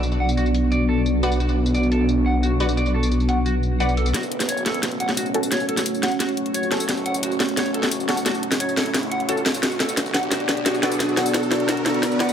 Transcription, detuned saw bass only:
X:1
M:4/4
L:1/8
Q:1/4=175
K:F#m
V:1 name="Detuned saw bass" clef=bass
B,,,8- | B,,,8- | B,,,8 | F,,,3 E,,,2 =G,,, F,,,2- |
F,,,3 E,,,2 F,,,2 F,,, | F,,,3 E,,,2 =G,,, F,,,2- | F,,,3 A,,, C,,3 F,,, | B,,,3 A,,,2 C,, B,,,2- |
B,,,3 z2 B,,,2 B,,, |]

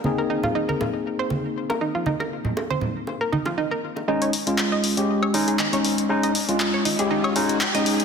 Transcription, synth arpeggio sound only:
X:1
M:4/4
L:1/16
Q:"Swing 16ths" 1/4=119
K:Ebmix
V:1 name="Synth arpeggio sound"
z B E F E B z3 c z3 B E F | E B z3 c z3 B E F E B z2 | E d z3 e z3 d E A E d z2 | z e z3 d E A E d z3 e z2 |]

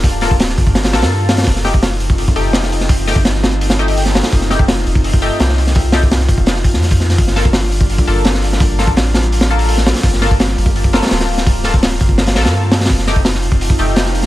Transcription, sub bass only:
X:1
M:4/4
L:1/16
Q:1/4=168
K:Gm
V:1 name="Sub bass" clef=bass
D,,,6 G,,,4 B,,, G,,4- G,, | F,,,8- F,,, z F,,,6- | F,,,3 G,,,12 z | F,,,6 F,,,4- F,,, z C,,4- |
C,,6 F,,,4 A,,, F,,4- F,, | G,,,8- G,,, z G,,,6- | G,,,3 A,,,12 z | G,,,6 G,,,4- G,,, z D,,,4- |
D,,,6 G,,,4 B,,, G,,4- G,, | F,,,8- F,,, z F,,,6 |]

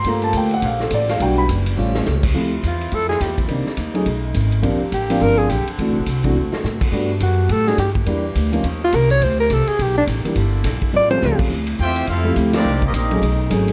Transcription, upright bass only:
X:1
M:4/4
L:1/8
Q:"Swing" 1/4=210
K:Dm
V:1 name="Upright bass" clef=bass
G,,2 D,,2 B,,,2 A,,,2 | =B,,,2 ^F,,,2 A,,,2 ^C,,2 | D,,2 E,,2 F,,2 E,,2 | C,, z _E,,2 =B,,,2 ^G,,,2 |
B,,, z A,,,2 G,,,2 B,,, z | (3D,, C,, A,,, C,,2 D,, z A,, z | G,,2 ^F,,2 A,,2 G,,2 | E,,2 D,,2 _E,,2 C,,2 |
D,,2 C,, z =B,,,2 A,,, z | G,,,2 B,,, z A,,,2 ^C,, z | D,,2 E,,2 F,,2 D,,2 | C,,2 B,,,2 =B,,,2 ^G,,,2 |]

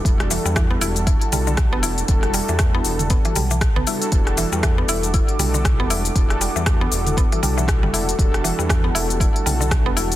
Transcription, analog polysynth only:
X:1
M:4/4
L:1/8
Q:"Swing 16ths" 1/4=118
K:Em
V:1 name="Analog polysynth"
[G,DEFA]4- [G,DEFA] [G,DEFA]3 | [G,DEFA]4- [G,DEFA] z2 [G,DEFA] | [G,DEFA]4- [G,DEFA] [G,DEFA]3 | [G,DEFA]4- [G,DEFA] [G,DEFA]3 |
[G,DEFA]4- [G,DEFA] [G,DEFA]3 |]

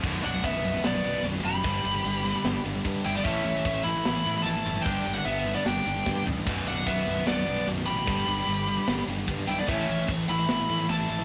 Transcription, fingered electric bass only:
X:1
M:4/4
L:1/8
Q:1/4=149
K:Bm
V:1 name="Fingered electric bass" clef=bass
B,,,, B,,,, B,,,, B,,,, B,,,, B,,, B,,,, F,,, | G,,, G,,, G,,,2 G,,, G,,, G,, G,,, | A,,, A,,, A,,, A,,, A,,, A,, A,,, G,,, | G,,, G,,, G,,,2 G,,, G,,, G,, A,,, |
B,,,, B,,,, B,,,, B,,,, B,,,, B,,, B,,,, A,,, | G,,, G,,, G,,,2 G,,, G,,, G,, B,,, | A,,, A,,, A,,, A,,, A,,, A,, A,,, A,,, |]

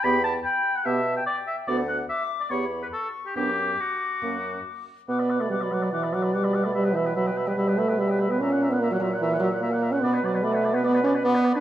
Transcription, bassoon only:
X:1
M:4/4
L:1/8
Q:1/4=145
K:Bm
V:1 name="Bassoon" clef=bass
E,,2 z2 B,,2 z2 | D,,2 z2 E,,2 z2 | F,,2 z2 F,,2 z2 | B,,8- |
B,,8 | ^A,,8 | B,,6- B,, z |]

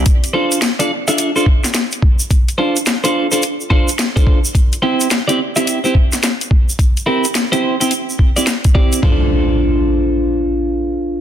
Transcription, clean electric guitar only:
X:1
M:4/4
L:1/16
Q:"Swing 16ths" 1/4=107
K:Dm
V:1 name="Clean electric guitar"
z2 [DFAc]2 z [DFAd] z [DFAe]2 [DFAc] z6 | z2 [DFAc] z2 [DFAc]2 [DFAc] z2 [DFAc] z2 [DFAc]2 z | z2 [CEGc]2 z [CEGd] z [CEGe]2 [CEGc] z6 | z2 [CEGB] z2 [CEGc]2 [CEGc] z3 [CEGd] z2 [CEGd]2 |
[DFAc]16 |]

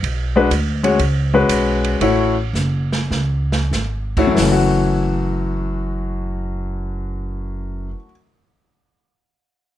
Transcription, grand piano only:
X:1
M:4/4
L:1/8
Q:"Swing" 1/4=89
K:F#m
V:1 name="Grand piano"
z [G,DFB] z [G,CFc] z [G,CFB]3 | [A,EFc] z6 [A,EFc] | [F,,E,A,F]8- | [F,,E,A,F]8 |]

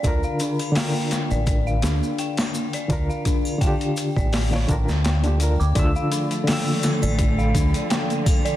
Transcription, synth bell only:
X:1
M:4/4
L:1/16
Q:"Swing 16ths" 1/4=84
K:Dm
V:1 name="Synth bell"
d f D2 g3 d d f D2 g3 d | z f D2 g3 d d f g z g z2 d' | d f D2 g3 d d f D2 g3 d |]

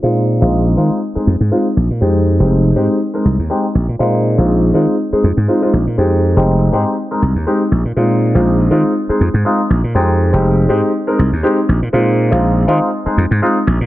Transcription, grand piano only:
X:1
M:4/4
L:1/16
Q:"Swing 16ths" 1/4=121
K:Bbdor
V:1 name="Grand piano"
[A,CEF]3 [A,CEF]3 [A,CEF]2 z [A,CEA] z2 [A,CEF] z3 | [A,CEG]3 [A,CEG]3 [A,CEG]2 z [A,CEB] z2 [A,CEG] z3 | [A,CEF]3 [A,CEF]3 [A,CEF]2 z [A,CEA] z2 [A,CEF] [A,CEF] z2 | [A,CEG]3 [A,CEG]3 [A,CEG]2 z [A,CEB] z2 [A,CEG] z3 |
[A,CEF]3 [A,CEF]3 [A,CEF]2 z [A,CEA] z2 [A,CEF] z3 | [A,CEG]3 [A,CEG]3 [A,CEG]2 z [A,CEB] z2 [A,CEG] z3 | [A,CEF]3 [A,CEF]3 [A,CEF]2 z [A,CEA] z2 [A,CEF] z3 |]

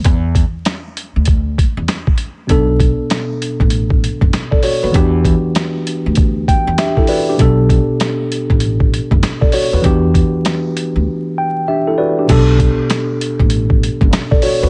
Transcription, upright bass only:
X:1
M:4/4
L:1/16
Q:"Swing 16ths" 1/4=98
K:Bm
V:1 name="Upright bass" clef=bass
E,,3 z4 D,,4 E,, z4 | B,,,3 z4 A,,,4 F,,, z3 ^D,, | E,,3 z4 D,,4 E,, z4 | B,,,3 z4 A,,,4 F,,, z3 ^D,, |
E,,3 z4 D,, z8 | B,,,3 z4 A,,,4 F,,, z3 ^D,, |]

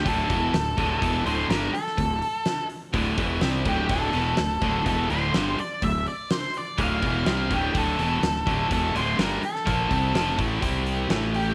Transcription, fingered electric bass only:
X:1
M:4/4
L:1/8
Q:1/4=125
K:Dm
V:1 name="Fingered electric bass" clef=bass
D,,, E,,, D,,, D,,, E,,, D,,, G,,, z | D,,, z3 D,,, E,,, C,, D,,, | D,,, E,,, D,,, D,,, E,,, D,,, G,,, z | D,,, z3 D,,, E,,, C,, D,,, |
D,,, E,,, D,,, D,,, E,,, D,,, G,,, z | B,,, C,, F,,, A,,, C,,2 A,,,2 |]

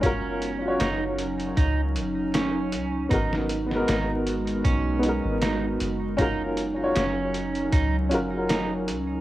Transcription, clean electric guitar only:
X:1
M:4/4
L:1/8
Q:"Swing 16ths" 1/4=78
K:Ebm
V:1 name="Clean electric guitar"
D2 E z E z D2 | E z E z D2 E z | E z D2 E z E z |]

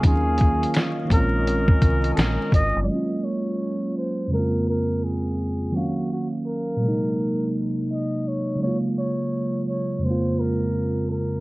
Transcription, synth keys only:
X:1
M:4/4
L:1/8
Q:"Swing 16ths" 1/4=84
K:Bbm
V:1 name="Synth keys"
[E,G,B,DF]3 [E,A,CDF]4- [E,A,CDF] | [G,A,B,DF]4 [F,,D,A,B,CF]4 | [E,G,B,Df]3 [B,,C,G,A,B,E]4- [B,,C,G,A,B,E] | [D,G,A,B,F]4 [F,,D,A,B,CF]4 |]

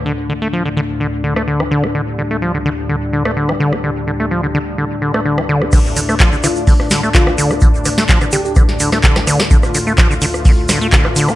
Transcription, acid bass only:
X:1
M:4/4
L:1/16
Q:1/4=127
K:Dm
V:1 name="Acid bass" clef=bass
D, z D, A, F, D, D, z D, z D, A, D, F, D, D | D, z D, A, F, D, D, z D, z D, A, D, F, D, D | D, z D, A, F, D, D, z D, z D, A, D, F, D, D | D, z D, A, F, D, D, z D, z D, A, D, F, D, D |
D, z D, A, F, D, D, z D, z D, A, D, F, D, D | D, z D, A, F, D, D, z D, z D, A, D, F, D, D |]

